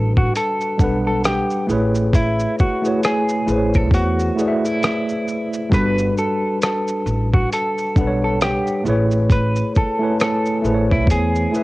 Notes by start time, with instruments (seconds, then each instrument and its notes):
Already playing: upright bass A1, tine electric piano G3 D4 F#4 A4 B4, clean electric guitar A4
0.17 clean electric guitar F#4, kick
0.36 clean electric guitar A4, closed hi-hat, shaker
0.61 shaker
0.78 upright bass B1, tine electric piano G3 D4 F#5, kick, shaker
0.82 tine electric piano A4 B4
1.07 clean electric guitar A4
1.24 clean electric guitar G4, cross-stick, closed hi-hat, shaker
1.50 shaker
1.67 upright bass A1, tine electric piano A3 E4 G#4, shaker
1.71 tine electric piano B4 C#5
1.95 shaker
2.13 clean electric guitar E4, kick, closed hi-hat, shaker
2.39 shaker
2.59 clean electric guitar F#4, kick, shaker
2.82 tine electric piano A3 E4 G#4, shaker
2.86 tine electric piano B4 C#5
3.03 clean electric guitar G#4, cross-stick, closed hi-hat, shaker
3.29 shaker
3.46 upright bass A1, tine electric piano A3 E4 G#4, shaker
3.50 tine electric piano B4 C5
3.58 tine electric piano C#5
3.74 clean electric guitar A4, kick, shaker
3.91 upright bass E2, clean electric guitar F#4, kick, closed hi-hat, shaker
4.19 shaker
4.36 tine electric piano A3 E4 G#4, shaker
4.40 tine electric piano B4 D5
4.48 tine electric piano E5
4.65 clean electric guitar E4, shaker
4.83 cross-stick, closed hi-hat, shaker
5.09 shaker
5.28 shaker
5.53 shaker
5.69 upright bass G1, tine electric piano G3 D4 F#4, kick, closed hi-hat, shaker
5.74 tine electric piano A4 B4, clean electric guitar B4
5.98 shaker
6.18 clean electric guitar A4, shaker
6.62 clean electric guitar A4, cross-stick, closed hi-hat, shaker
6.88 shaker
7.06 upright bass A1, shaker
7.34 clean electric guitar F#4, kick
7.52 clean electric guitar A4, closed hi-hat, shaker
7.78 shaker
7.95 upright bass B1, tine electric piano G3 D4 F#5, kick, shaker
7.99 tine electric piano A4 B4
8.07 tine electric piano C#5
8.24 clean electric guitar A4
8.41 clean electric guitar G4, cross-stick, closed hi-hat, shaker
8.67 shaker
8.84 upright bass A1, tine electric piano A3 E4 G#4, shaker
8.88 tine electric piano B4 C#5
9.11 shaker
9.30 clean electric guitar B4, kick, closed hi-hat, shaker
9.56 shaker
9.75 clean electric guitar A4, kick, shaker
9.99 tine electric piano A3 E4 G#5
10.03 tine electric piano B4 C#5
10.20 clean electric guitar A4, cross-stick, closed hi-hat, shaker
10.46 shaker
10.62 upright bass A1, tine electric piano A3 E4 G#4, shaker
10.66 tine electric piano B4 C5
10.74 tine electric piano C#5
10.92 clean electric guitar E4, kick
11.07 upright bass E2, kick, closed hi-hat, shaker
11.11 clean electric guitar G#4
11.36 shaker
11.52 tine electric piano A3 E4 G#4, shaker
11.56 tine electric piano B4 E5